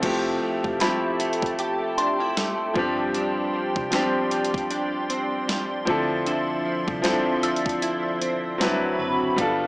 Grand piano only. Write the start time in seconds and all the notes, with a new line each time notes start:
0.01 F3 A3 C4 E4
0.06 G4
0.79 F3 A3 C4 E4
0.84 G4
2.74 F3 G3 C4 D4
2.79 G4
3.90 F3 G3 C4 D4
3.95 G4
5.85 F3 C4 D4 E4
5.90 A4
7.02 F3 C4 D4 E4
7.07 A4
8.58 F#3 C4 D4 E4
8.63 B4
9.36 G3 B3 D4 F4
9.41 A4